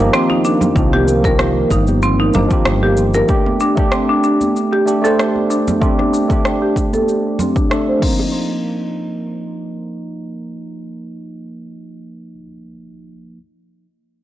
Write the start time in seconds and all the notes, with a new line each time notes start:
Already playing: D#3 F3 D#4
0.00 A#3 G4
0.13 C4, cross-stick, cabasa
0.30 D#4, high conga
0.45 D4, cabasa
0.61 high conga, low conga, cabasa
0.76 C2 D#3 F3 A#3, kick, cabasa
0.93 G4, cross-stick, high conga
1.08 cabasa
1.23 F3 A#3 A#4, kick, high bongo, cabasa
1.27 D#3
1.39 cross-stick, cabasa
1.70 G1 D#4, kick, high bongo, cabasa
1.87 high bongo, high conga, cabasa
2.02 C4, cabasa
2.20 D#4
2.33 G1 F3 A#3 D4 D#4, low conga, cabasa
2.49 F3 A#3 G4, kick, cabasa
2.65 G1, cross-stick, cabasa
2.83 G4
2.97 cabasa
3.14 A#4, high bongo, cabasa
3.27 A3 D4 G4, kick, cabasa
3.46 high conga
3.60 D4, cabasa
3.75 A3 D4, kick, cabasa
3.79 G4
3.92 C4, cross-stick, cabasa
4.09 D4
4.24 D4, cabasa
4.41 high conga, cabasa
4.56 cabasa
4.73 G4, high bongo
4.86 A3 D4 G4, cabasa
5.02 A3 D4 A4, high bongo, cabasa
5.06 C5
5.19 cross-stick, cabasa
5.36 high conga
5.50 D4, cabasa
5.68 high conga, low conga, cabasa
5.81 A3 C4 D4 G4, kick, cabasa
5.99 D4, cross-stick, high conga
6.14 D4, cabasa
6.28 A3 D4, kick, high bongo, cabasa
6.32 G4
6.45 cross-stick, cabasa
6.62 G4
6.76 kick, high bongo, cabasa
6.93 A4, high bongo, high conga, cabasa
7.08 cabasa
7.39 C4, low conga, cabasa
7.56 D4, kick, cabasa
7.70 A3 D4 A4, cross-stick, cabasa
7.88 C5
7.99 F3 A#3 C4, kick, crash
8.05 D#4
8.19 high bongo